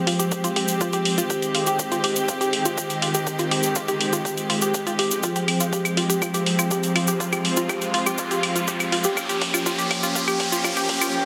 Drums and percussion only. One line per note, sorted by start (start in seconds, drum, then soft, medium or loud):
0.07 open hi-hat loud
0.20 closed hi-hat medium
0.20 cabasa medium
0.31 kick loud
0.31 closed hi-hat medium
0.31 cabasa medium
0.44 closed hi-hat medium
0.44 cabasa soft
0.56 open hi-hat loud
0.68 closed hi-hat medium
0.68 cabasa medium
0.81 kick loud
0.81 closed hi-hat medium
0.81 cabasa medium
0.93 closed hi-hat medium
0.93 cabasa soft
1.05 open hi-hat loud
1.18 closed hi-hat medium
1.18 cabasa medium
1.30 kick loud
1.30 closed hi-hat medium
1.30 cabasa medium
1.42 closed hi-hat medium
1.42 cabasa soft
1.55 open hi-hat loud
1.67 closed hi-hat medium
1.67 cabasa medium
1.79 kick loud
1.79 closed hi-hat medium
1.79 cabasa medium
1.92 closed hi-hat medium
1.92 cabasa soft
2.04 open hi-hat loud
2.16 closed hi-hat medium
2.16 cabasa medium
2.28 kick loud
2.28 closed hi-hat medium
2.28 cabasa medium
2.41 closed hi-hat medium
2.41 cabasa soft
2.53 open hi-hat loud
2.65 closed hi-hat medium
2.65 cabasa medium
2.78 kick loud
2.78 closed hi-hat medium
2.78 cabasa medium
2.90 closed hi-hat medium
2.90 cabasa soft
3.02 open hi-hat loud
3.14 closed hi-hat medium
3.14 cabasa medium
3.27 kick loud
3.27 closed hi-hat medium
3.27 cabasa medium
3.39 closed hi-hat medium
3.39 cabasa soft
3.51 open hi-hat loud
3.63 closed hi-hat medium
3.63 cabasa medium
3.75 kick loud
3.75 closed hi-hat medium
3.75 cabasa medium
3.88 closed hi-hat medium
3.88 cabasa soft
4.01 open hi-hat loud
4.13 closed hi-hat medium
4.13 cabasa medium
4.25 kick loud
4.25 closed hi-hat medium
4.25 cabasa medium
4.37 closed hi-hat medium
4.37 cabasa soft
4.50 open hi-hat loud
4.62 closed hi-hat medium
4.62 cabasa medium
4.74 kick loud
4.74 closed hi-hat medium
4.74 cabasa medium
4.87 closed hi-hat medium
4.87 cabasa soft
4.99 open hi-hat loud
5.11 closed hi-hat medium
5.11 cabasa medium
5.23 kick loud
5.23 closed hi-hat medium
5.23 cabasa medium
5.36 closed hi-hat medium
5.36 cabasa soft
5.48 open hi-hat loud
5.48 claves medium
5.60 closed hi-hat medium
5.60 cabasa medium
5.73 kick loud
5.73 closed hi-hat medium
5.73 cabasa medium
5.85 closed hi-hat medium
5.85 cabasa soft
5.85 claves soft
5.97 open hi-hat loud
6.10 closed hi-hat medium
6.10 cabasa medium
6.22 kick loud
6.22 closed hi-hat medium
6.22 cabasa medium
6.22 claves medium
6.34 closed hi-hat medium
6.34 cabasa soft
6.46 open hi-hat loud
6.59 closed hi-hat medium
6.59 cabasa medium
6.59 claves medium
6.71 kick loud
6.71 closed hi-hat medium
6.71 cabasa medium
6.83 closed hi-hat medium
6.83 cabasa soft
6.96 open hi-hat loud
6.96 claves medium
7.07 closed hi-hat medium
7.07 cabasa medium
7.20 kick loud
7.20 closed hi-hat medium
7.20 cabasa medium
7.32 closed hi-hat medium
7.32 cabasa soft
7.32 claves medium
7.45 open hi-hat loud
7.57 closed hi-hat medium
7.57 cabasa medium
7.69 kick loud
7.69 closed hi-hat medium
7.69 cabasa medium
7.69 claves medium
7.81 closed hi-hat medium
7.81 cabasa soft
7.94 open hi-hat loud
8.06 closed hi-hat medium
8.06 cabasa medium
8.06 claves medium
8.18 kick loud
8.18 closed hi-hat medium
8.18 cabasa medium
8.31 closed hi-hat medium
8.31 cabasa soft
8.43 open hi-hat loud
8.43 claves medium
8.56 closed hi-hat medium
8.56 cabasa medium
8.67 kick loud
8.67 closed hi-hat medium
8.67 cabasa medium
8.80 closed hi-hat medium
8.80 cabasa soft
8.80 claves medium
8.92 open hi-hat loud
9.04 closed hi-hat medium
9.04 cabasa medium
9.17 kick loud
9.17 closed hi-hat medium
9.17 cabasa medium
9.17 claves medium
9.29 closed hi-hat medium
9.29 cabasa soft
9.41 kick loud
9.41 open hi-hat loud
9.54 closed hi-hat medium
9.54 cabasa medium
9.54 claves medium
9.66 kick loud
9.66 closed hi-hat medium
9.66 cabasa medium
9.78 closed hi-hat medium
9.78 cabasa soft
9.91 kick loud
9.91 open hi-hat loud
9.91 claves medium
10.03 closed hi-hat medium
10.03 cabasa medium
10.15 kick loud
10.15 closed hi-hat medium
10.15 cabasa medium
10.28 closed hi-hat medium
10.28 cabasa soft
10.28 claves medium
10.40 kick loud
10.40 open hi-hat loud
10.52 closed hi-hat medium
10.52 cabasa medium
10.64 kick loud
10.64 closed hi-hat medium
10.64 cabasa medium
10.64 claves medium
10.77 closed hi-hat medium
10.77 cabasa soft
10.89 kick loud
10.89 open hi-hat loud
11.01 closed hi-hat medium
11.01 cabasa medium
11.01 claves medium